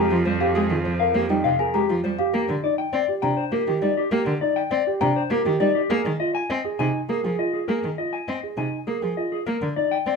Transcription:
Already playing: cello F2, clean electric guitar G4, grand piano G4, celesta A#5
0.11 cello F3, grand piano F4
0.25 cello G3, clean electric guitar C5
0.40 clean electric guitar G4, grand piano G4, celesta F5
0.55 cello G#3, clean electric guitar G#4, grand piano G#4
0.70 cello D#3, grand piano F4
0.84 cello F3, clean electric guitar C5
1.00 grand piano A#4, clean electric guitar F5
1.14 cello A#3, grand piano G4, clean electric guitar C5
1.30 cello G3, grand piano D#4, celesta G5
1.44 cello C3, clean electric guitar F5
1.59 grand piano G#4, clean electric guitar A#4, celesta G#5
1.74 cello G#3, grand piano G4, clean electric guitar G4, celesta A#5
1.89 cello F3, grand piano F4
2.04 cello G3, clean electric guitar C5
2.18 grand piano G4, clean electric guitar G4, celesta F5
2.33 cello A#3, grand piano G4, clean electric guitar A#4
2.49 cello D3
2.63 grand piano D#4, clean electric guitar D5
2.78 clean electric guitar G5
2.93 cello C4, clean electric guitar D5
3.08 grand piano G4
3.22 cello C3, grand piano D4, clean electric guitar G5, celesta A#5
3.37 clean electric guitar C5
3.52 cello A#3, clean electric guitar G4, grand piano A#4
3.67 cello D#3, grand piano G4
3.82 cello G3, grand piano D#4, clean electric guitar D5
3.97 clean electric guitar G4
4.12 cello A#3, grand piano G4, clean electric guitar A#4
4.26 cello D3
4.41 grand piano D#4, clean electric guitar D5
4.56 clean electric guitar G5
4.71 cello C4, clean electric guitar D5
4.86 grand piano G4
5.01 cello C3, grand piano D4, clean electric guitar G5, celesta A#5
5.16 clean electric guitar C5
5.30 cello A#3, clean electric guitar G4, grand piano A#4
5.46 cello D#3, grand piano G4
5.60 cello G3, grand piano D#4, clean electric guitar D5
5.75 clean electric guitar G4
5.90 cello A#3, grand piano G#4, clean electric guitar A#4
6.05 cello D#3
6.20 grand piano F4, clean electric guitar D#5
6.35 clean electric guitar G#5
6.50 cello C4, clean electric guitar D#5
6.64 grand piano G#4
6.79 cello C3, grand piano D#4, clean electric guitar G#5
7.09 cello A#3, clean electric guitar G#4, grand piano A#4
7.24 cello F3, grand piano G#4
7.39 grand piano F4, clean electric guitar D#5
7.53 clean electric guitar G#4
7.68 cello A#3, grand piano G#4, clean electric guitar A#4
7.84 cello D#3
7.98 grand piano F4, clean electric guitar D#5
8.13 clean electric guitar G#5
8.28 cello C4, clean electric guitar D#5
8.43 grand piano G#4
8.57 cello C3, grand piano D#4, clean electric guitar G#5
8.87 cello A#3, clean electric guitar G#4, grand piano A#4
9.02 cello F3, grand piano G#4
9.17 grand piano F4, clean electric guitar D#5
9.32 clean electric guitar G#4
9.47 cello A#3, clean electric guitar A#4
9.62 cello D3
9.76 grand piano D#4, clean electric guitar D5
9.91 clean electric guitar G5
10.06 cello C4, clean electric guitar D5

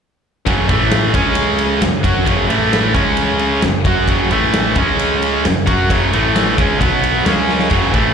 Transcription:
0.46 picked electric bass F#1, distorted electric guitar F#2 C#3 F#3, kick, ride
0.69 picked electric bass A1, distorted electric guitar A2 E3 A3, kick, ride
0.81 snare
0.91 snare, ride
1.13 picked electric bass C#2, distorted electric guitar C#3 G#3 C#4, kick, ride
1.35 ride
1.59 ride
1.81 picked electric bass F#1, distorted electric guitar F#2 C#3, snare, ride
2.03 picked electric bass F#2, distorted electric guitar F#3 C#4 F#4, kick, ride
2.26 picked electric bass F#1, distorted electric guitar F#2 C#3 F#3, kick, ride
2.49 picked electric bass A1, distorted electric guitar A2 E3 A3, ride
2.61 snare
2.73 snare, ride
2.94 picked electric bass C#2, distorted electric guitar C#3 G#3 C#4, kick, ride
3.17 ride
3.39 ride
3.62 picked electric bass F#1, distorted electric guitar F#2 C#3, snare, ride
3.84 picked electric bass F#2, distorted electric guitar F#3 C#4 F#4, kick, ride
4.08 picked electric bass F#1, distorted electric guitar F#2 C#3 F#3, kick, ride
4.30 picked electric bass A1, distorted electric guitar A2 E3 A3, ride
4.43 snare
4.54 snare, ride
4.75 picked electric bass C#2, distorted electric guitar C#3 G#3 C#4, kick, ride
4.99 ride
5.22 ride
5.44 picked electric bass F#1, distorted electric guitar F#2 C#3, snare, ride
5.66 picked electric bass F#2, distorted electric guitar F#3 C#4 F#4, kick, ride
5.90 picked electric bass F#1, distorted electric guitar F#2 C#3 F#3, kick, ride
6.13 picked electric bass A1, distorted electric guitar A2 E3 A3, ride
6.36 snare, ride
6.57 picked electric bass C#2, distorted electric guitar C#3 G#3 C#4, kick, ride
6.79 picked electric bass B1, distorted electric guitar B2 F#3 B3, kick, ride
7.04 ride
7.24 picked electric bass C#2, distorted electric guitar C#3 G#3 C#4, snare, ride
7.38 snare
7.49 snare
7.59 snare
7.70 picked electric bass F#1, distorted electric guitar F#2 C#3 F#3, kick, crash
7.92 picked electric bass A1, distorted electric guitar A2 E3 A3, kick, ride

